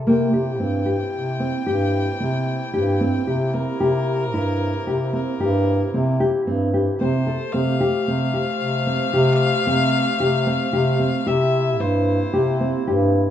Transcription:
0.07 C3 A#3 E4 G5
0.33 G4
0.60 G2 C4
0.86 G4
1.13 C3
1.40 C4
1.66 G2 G4
2.20 C3 C4
2.73 G2 G4
3.01 C4
3.27 C3 G4
3.54 C4 A#4
3.80 C3 G4
4.33 G2 E4
4.87 C3 G4
5.13 C4 A#4
5.40 G2 G4
5.94 C3 C4
6.20 G4
6.47 G2 C4
6.74 G4
7.00 C3 C4 C5
7.27 A4
7.52 C3 F3 A3 C4 G4 F5
7.80 G4
8.06 C3 C4
8.34 G4
8.60 C3
8.87 C4
9.13 C3 G4
9.66 C3 C4
10.19 C3 G4
10.47 C4
10.73 C3 G4
10.99 C4
11.26 C3 A#3 E4 G4 E5
11.80 G2 E4 C5
12.33 C3 G4
12.60 C4
12.87 G2 G4

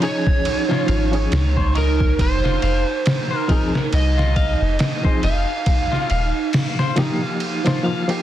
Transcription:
Already playing: D#4
0.00 F3 C#4 D#4 G#4, ride
0.05 C#5
0.27 kick
0.45 ride
0.69 F3 C#4 D#4 F4 C#5, snare
0.87 G#1 F3 C#4 D#4 F4 F5, ride
1.12 F3 C#4 D#4 G#4, ride
1.32 C#2, snare, ride
1.57 C5, kick
1.75 D#4 A#4, ride
2.00 kick
2.19 F1 C5, kick, ride
2.44 F4, snare
2.62 F1 F5, ride
3.06 snare, ride
3.31 C5
3.38 A#4
3.48 F3 C4 D#4 G#4, kick, ride
3.75 snare
3.93 C2 D#5, ride
4.17 F4, snare
4.36 F5, kick, ride
4.62 F1
4.79 snare, ride
5.03 F3 C4 D#4 G#4 C5, kick
5.23 F1 D#4 F5, ride
5.66 kick, ride
5.92 F4, snare
6.10 D#1 F5, ride
6.53 snare, open hi-hat
6.79 C5, snare
6.96 F3 A#3 D#4 G4, snare, ride
7.40 ride
7.64 F3 A#3 D#4 F4 C5, snare, ride
7.83 F3 A#3 D#4 F4 F5
8.08 F3 A#3 D#4 G4, ride

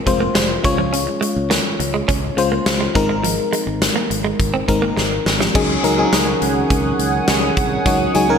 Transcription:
Already playing: G#3 C4 F4 A#4
0.06 F1 G#3 C4 F4 C5, muted clean electric guitar stroke, kick, closed hi-hat
0.20 A#3
0.35 F1 G#3, snare, closed hi-hat
0.49 muted clean electric guitar stroke
0.63 C#2 G#3 C#4 F4 C#5, kick, closed hi-hat
0.78 F3
0.93 C#4, closed hi-hat
1.07 muted clean electric guitar stroke
1.21 G#3, closed hi-hat
1.36 C#2
1.50 A#3, snare, closed hi-hat
1.80 C#2, muted clean electric guitar stroke, closed hi-hat
1.94 G#3
2.08 C#2 C#4, kick, closed hi-hat
2.37 C#2 G#3 C#4 F4 C5, muted clean electric guitar stroke, closed hi-hat
2.52 A#3
2.66 C#2, snare, closed hi-hat
2.81 G#3
2.95 G#1 G#3 C4 D#4 A#4, muted clean electric guitar stroke, kick, closed hi-hat
3.09 G#3
3.23 F3, closed hi-hat
3.53 G#3, closed hi-hat
3.67 G#1, muted clean electric guitar stroke
3.82 snare, closed hi-hat
3.96 A#3
4.10 G#1, muted clean electric guitar stroke, closed hi-hat
4.25 G#3
4.40 G#1, kick, closed hi-hat
4.54 C4
4.68 G#1 G#3 C4 D#4 A#4, muted clean electric guitar stroke, kick, closed hi-hat
4.82 A#3
4.97 G#1 G#3, snare
5.11 muted clean electric guitar stroke
5.26 G#1, snare
5.40 F3, snare
5.54 C#2 D#3 F#3 C#4 D#4 G#4 C#5 F#5 G#5 D#6, kick, crash
5.83 C#2 F#3 C#4 D#4 A#4, closed hi-hat
5.98 F#3 C4 D#4 G#4
6.05 C#4
6.13 C#2, snare, closed hi-hat
6.42 C#2, closed hi-hat
6.70 C#2, kick, closed hi-hat
6.99 C#2, closed hi-hat
7.28 C#2, snare, closed hi-hat
7.57 C2, kick, closed hi-hat
7.85 C#2 F#3 C#4 D#4 F#4, kick, closed hi-hat
8.14 C#2 F#3 C#4 D#4 G#4, closed hi-hat
8.29 F#3 C#4 D#4 A#4

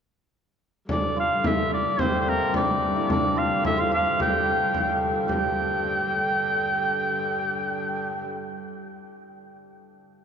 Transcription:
0.89 G2 D3 D4 D5, frame drum
1.16 F4 F5
1.44 E4 E5, frame drum
1.73 D5
1.99 C4 C5, frame drum
2.20 C5
2.28 A#3 A#4
2.54 D4 D5, frame drum
2.96 E4
3.10 D4 D5, frame drum
3.36 F4 F5
3.64 E4 E5, frame drum
3.77 F4 F5
3.91 F4 F5
4.19 G4 G5, frame drum
4.74 frame drum
5.28 G2 D3 G4 G5, frame drum

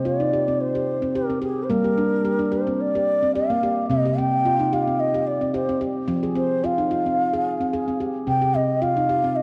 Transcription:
Already playing: C3
0.05 F4 D5
0.20 D#4
0.34 G4
0.48 C4
0.61 C5
0.75 G4
1.02 C4
1.16 G4 A#4
1.30 C4
1.42 G4 G#4
1.64 C5
1.70 G3 A#3 A#4
1.84 G4
1.97 D4
2.25 G4
2.39 D4
2.52 G4 C5
2.67 C4
2.81 D5
2.95 G4
3.23 C4
3.35 G4 F5
3.50 A#3
3.63 G4
3.90 C3 C4 D#5
4.05 G4
4.18 C4 G5
4.45 F4
4.60 D#4
4.73 G4 F5
4.88 C4
5.00 D#5
5.14 G4
5.27 D5
5.41 C4
5.54 G4 C5
5.69 C4
5.81 G4
6.08 F3 C4
6.23 G#4
6.36 C4 C5
6.64 F4 F5
6.78 D#4
6.91 F4
7.06 C4
7.33 G#4
7.61 C4
7.73 G#4
7.88 C4
8.00 G4
8.27 C3 C4 G5
8.42 G4
8.55 C4 D#5
8.82 F4 F5
8.97 D#4
9.09 G4
9.24 C4
9.36 D#5

